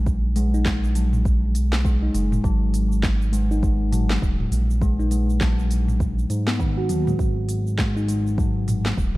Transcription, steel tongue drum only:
0, 0, Header, 1, 2, 480
1, 0, Start_track
1, 0, Tempo, 594059
1, 50, Time_signature, 4, 2, 24, 8
1, 7413, End_track
2, 0, Start_track
2, 0, Title_t, "Steel tongue drum"
2, 0, Program_c, 0, 114
2, 294, Note_on_c, 0, 56, 102
2, 428, Note_off_c, 0, 56, 0
2, 437, Note_on_c, 0, 63, 71
2, 522, Note_off_c, 0, 63, 0
2, 534, Note_on_c, 0, 56, 83
2, 668, Note_off_c, 0, 56, 0
2, 774, Note_on_c, 0, 54, 74
2, 908, Note_off_c, 0, 54, 0
2, 1494, Note_on_c, 0, 56, 99
2, 1628, Note_off_c, 0, 56, 0
2, 1636, Note_on_c, 0, 63, 72
2, 1722, Note_off_c, 0, 63, 0
2, 1731, Note_on_c, 0, 56, 79
2, 1867, Note_off_c, 0, 56, 0
2, 1971, Note_on_c, 0, 54, 89
2, 2107, Note_off_c, 0, 54, 0
2, 2689, Note_on_c, 0, 56, 92
2, 2826, Note_off_c, 0, 56, 0
2, 2836, Note_on_c, 0, 63, 77
2, 2922, Note_off_c, 0, 63, 0
2, 2932, Note_on_c, 0, 56, 82
2, 3067, Note_off_c, 0, 56, 0
2, 3170, Note_on_c, 0, 54, 76
2, 3307, Note_off_c, 0, 54, 0
2, 3893, Note_on_c, 0, 56, 99
2, 4028, Note_off_c, 0, 56, 0
2, 4034, Note_on_c, 0, 63, 72
2, 4121, Note_off_c, 0, 63, 0
2, 4131, Note_on_c, 0, 56, 76
2, 4267, Note_off_c, 0, 56, 0
2, 4370, Note_on_c, 0, 54, 85
2, 4507, Note_off_c, 0, 54, 0
2, 5232, Note_on_c, 0, 59, 78
2, 5320, Note_off_c, 0, 59, 0
2, 5329, Note_on_c, 0, 51, 95
2, 5458, Note_off_c, 0, 51, 0
2, 5474, Note_on_c, 0, 66, 72
2, 5529, Note_off_c, 0, 66, 0
2, 5572, Note_on_c, 0, 54, 78
2, 5707, Note_off_c, 0, 54, 0
2, 5715, Note_on_c, 0, 56, 71
2, 5806, Note_off_c, 0, 56, 0
2, 6291, Note_on_c, 0, 56, 99
2, 6427, Note_off_c, 0, 56, 0
2, 6436, Note_on_c, 0, 63, 77
2, 6522, Note_off_c, 0, 63, 0
2, 6533, Note_on_c, 0, 56, 68
2, 6668, Note_off_c, 0, 56, 0
2, 6772, Note_on_c, 0, 54, 82
2, 6907, Note_off_c, 0, 54, 0
2, 7413, End_track
0, 0, End_of_file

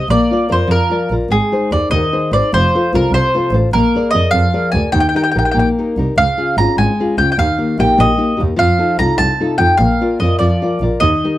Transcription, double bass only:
0, 0, Header, 1, 2, 480
1, 0, Start_track
1, 0, Tempo, 403497
1, 98, Time_signature, 6, 3, 24, 8
1, 5378, Tempo, 410959
1, 7778, Tempo, 400802
1, 11618, Tempo, 411805
1, 13482, End_track
2, 0, Start_track
2, 0, Title_t, "Double bass"
2, 0, Program_c, 0, 43
2, 106, Note_on_c, 0, 34, 83
2, 201, Note_off_c, 0, 34, 0
2, 589, Note_on_c, 0, 41, 72
2, 685, Note_off_c, 0, 41, 0
2, 810, Note_on_c, 0, 41, 77
2, 905, Note_off_c, 0, 41, 0
2, 1313, Note_on_c, 0, 34, 61
2, 1408, Note_off_c, 0, 34, 0
2, 1541, Note_on_c, 0, 32, 82
2, 1636, Note_off_c, 0, 32, 0
2, 2044, Note_on_c, 0, 39, 69
2, 2139, Note_off_c, 0, 39, 0
2, 2269, Note_on_c, 0, 39, 82
2, 2364, Note_off_c, 0, 39, 0
2, 2765, Note_on_c, 0, 32, 70
2, 2860, Note_off_c, 0, 32, 0
2, 3014, Note_on_c, 0, 29, 92
2, 3110, Note_off_c, 0, 29, 0
2, 3493, Note_on_c, 0, 36, 77
2, 3588, Note_off_c, 0, 36, 0
2, 3701, Note_on_c, 0, 36, 88
2, 3796, Note_off_c, 0, 36, 0
2, 4179, Note_on_c, 0, 33, 86
2, 4274, Note_off_c, 0, 33, 0
2, 4427, Note_on_c, 0, 34, 82
2, 4522, Note_off_c, 0, 34, 0
2, 4916, Note_on_c, 0, 41, 75
2, 5011, Note_off_c, 0, 41, 0
2, 5139, Note_on_c, 0, 41, 99
2, 5234, Note_off_c, 0, 41, 0
2, 5632, Note_on_c, 0, 38, 75
2, 5725, Note_off_c, 0, 38, 0
2, 5861, Note_on_c, 0, 39, 96
2, 5955, Note_off_c, 0, 39, 0
2, 6360, Note_on_c, 0, 34, 73
2, 6454, Note_off_c, 0, 34, 0
2, 6590, Note_on_c, 0, 34, 74
2, 6684, Note_off_c, 0, 34, 0
2, 7069, Note_on_c, 0, 36, 67
2, 7163, Note_off_c, 0, 36, 0
2, 7300, Note_on_c, 0, 37, 84
2, 7393, Note_off_c, 0, 37, 0
2, 7777, Note_on_c, 0, 32, 75
2, 7872, Note_off_c, 0, 32, 0
2, 8018, Note_on_c, 0, 32, 82
2, 8114, Note_off_c, 0, 32, 0
2, 8506, Note_on_c, 0, 37, 67
2, 8602, Note_off_c, 0, 37, 0
2, 8736, Note_on_c, 0, 39, 88
2, 8831, Note_off_c, 0, 39, 0
2, 9229, Note_on_c, 0, 34, 69
2, 9325, Note_off_c, 0, 34, 0
2, 9475, Note_on_c, 0, 34, 93
2, 9571, Note_off_c, 0, 34, 0
2, 9969, Note_on_c, 0, 39, 82
2, 10065, Note_off_c, 0, 39, 0
2, 10186, Note_on_c, 0, 41, 86
2, 10282, Note_off_c, 0, 41, 0
2, 10669, Note_on_c, 0, 36, 77
2, 10765, Note_off_c, 0, 36, 0
2, 10898, Note_on_c, 0, 36, 90
2, 10994, Note_off_c, 0, 36, 0
2, 11383, Note_on_c, 0, 41, 79
2, 11479, Note_off_c, 0, 41, 0
2, 11632, Note_on_c, 0, 34, 92
2, 11725, Note_off_c, 0, 34, 0
2, 12104, Note_on_c, 0, 41, 80
2, 12197, Note_off_c, 0, 41, 0
2, 12335, Note_on_c, 0, 41, 80
2, 12429, Note_off_c, 0, 41, 0
2, 12807, Note_on_c, 0, 34, 73
2, 12900, Note_off_c, 0, 34, 0
2, 13054, Note_on_c, 0, 39, 90
2, 13147, Note_off_c, 0, 39, 0
2, 13482, End_track
0, 0, End_of_file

